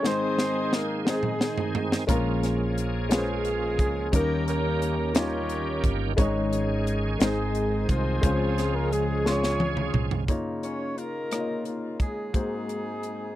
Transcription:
0.03 G#2 D#3 G#3 C4 D#4 G#4 C5, snare
0.39 snare
0.73 A#3 A#4, snare
1.05 G#3 C4 D#4 C5, snare
1.09 G#3 G#4
1.23 mid tom
1.41 snare
1.58 floor tom
1.75 floor tom
1.92 snare
2.07 A#1 A#2 F3 G#3 A#3 C#4 F4 G#4 A#4, kick, closed hi-hat
2.43 snare, closed hi-hat
2.78 closed hi-hat
3.09 G#3 C#4 F4 G#4 B4, snare, closed hi-hat
3.18 C5
3.45 closed hi-hat
3.79 C#2, kick, closed hi-hat
4.12 D#2 D#3 G3 A#3 C#4 D#4 G4 A#4, kick, closed hi-hat
4.48 A#3 C#4 G4 A#4, closed hi-hat
4.82 closed hi-hat
5.14 G3 C#4 D#4 F4 G4 A#4 C#5, snare, closed hi-hat
5.49 closed hi-hat
5.84 G1, kick, closed hi-hat
6.17 G#1 G#2 D#3 G#3 C#4 D#4 G#4 C#5, kick, closed hi-hat
6.53 closed hi-hat
6.87 closed hi-hat
7.19 G#1 G#2 D#3 G#3 A#3 C4 D#4 G#4 C5, snare, closed hi-hat
7.28 C4
7.55 closed hi-hat
7.89 C2 C4 F4 G#4 C5, kick, closed hi-hat
8.22 C#2 C#3 F3 G#3 C#4 F4 G#4 C5, kick, closed hi-hat
8.58 snare, closed hi-hat
8.75 A#3 A#4
8.92 G#3 G#4, closed hi-hat
9.25 G#3 C#4 F4 G#4 C#5 C6, snare
9.44 snare
9.60 high tom
9.77 mid tom
9.94 C2, mid tom
10.11 floor tom
10.27 C#3 A#3 D#4 F4 C#5, kick, closed hi-hat
10.63 C#4 C#5, cross-stick, closed hi-hat
10.97 A#3 D#4 F4 A#4, closed hi-hat
11.31 A#3 D#4 F4 C#5, cross-stick, closed hi-hat
11.40 D#5
11.65 A#3 A#4, closed hi-hat
12.00 G#3 G#4, kick, closed hi-hat
12.33 G#2 G#3 A#3 C4 D#4 F#4 G#4 C5, kick, closed hi-hat
12.69 cross-stick, closed hi-hat
13.03 closed hi-hat

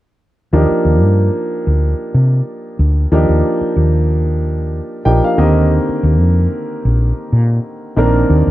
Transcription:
0.53 D#2 F3 A#3 D4 D#4 G4
0.85 D#2
1.02 G2
1.67 D2
2.14 C3
2.79 D2
3.12 D#2 F3 A#3 D4 D#4 G4
3.29 D#2
3.61 muted fretless electric bass stroke
3.76 D#2
5.05 A#1 F3 A#3 D4 D#4 G4 G5
5.24 F5
5.37 D#2 D3 D#3 A#3 C4 G4 D#5
5.89 muted fretless electric bass stroke
6.03 D#2
6.20 F2
6.85 A#1
7.33 A#2
7.96 A#1 D#3 A#3 C4 D4 A#4
8.30 D#2
8.47 D#2

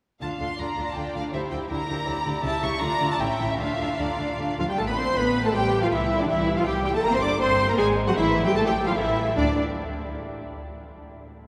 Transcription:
0.20 D2 D3 D4 F4 F5 A5
0.40 D2 D3 D4 F4 C6
0.59 D2 D3 D4 F4 D5 A#5
0.77 D2 D3 D4 F4
0.88 A5
0.96 D2 D3 D4 F4 G5
1.15 D2 D3 D4 F4 F5
1.33 D2 D3 E4 G4 C5 E5
1.51 D2 D3 E4 G4 G5
1.70 D2 D3 E4 G4 A#4 A#5
1.88 D2 D3 E4 G4
2.06 D2 D3 E4 G4 D5
2.25 D2 D3 E4 G4
2.43 C#2 C#3 E4 G4 E5 A5
2.62 C#2 C#3 E4 G4 C#6
2.81 D2 D3 D4 F4 D5 A#5
3.00 D2 D3 D4 F4
3.11 A5
3.19 A1 A2 C#4 E4 E5 G5
3.39 A1 A2 C#4 E4
3.50 E5
3.59 D2 D3 D4 F4 E5 F5
3.79 D2 D3 D4 F4
3.99 D2 D3 D4 F4 D5
4.18 D2 D3 D4 F4
4.38 D2 D3 D4 F4
4.58 D2 D3 F3 D4 F4 F5
4.68 G3 G4 G5
4.78 A1 A3 A4 A5
4.87 B3 B4 B5
4.97 C4 C5 C6
5.16 A1 B3 B4 B5
5.44 A3 A4 A5
5.53 A1 G3 G4 G5
5.82 F3 F4 F5
5.91 C2 E3 E4 E5
6.19 D3 D4 D5
6.28 C2 E3 E4 E5
6.56 F3 F4 F5
6.66 C2 G3 G4 G5
6.84 G3 G4 G5
6.94 A3 A4 A5
7.03 G1 A#3 A#4 A#5
7.12 C4 C5 C6
7.21 D4 D5 D6
7.39 G1 C4 C5 C6
7.68 A#3 A#4 A#5
7.78 G#1 G#3 G#4 G#5
8.07 F#3 F#4 F#5
8.16 A1 E3 E4 E5
8.45 G3 G4 G5
8.55 A1 A3 A4 A5
8.65 G3 G4 G5
8.86 F3 F4 F5
8.95 A1 E3 E4 E5
9.36 D2 D4 D5

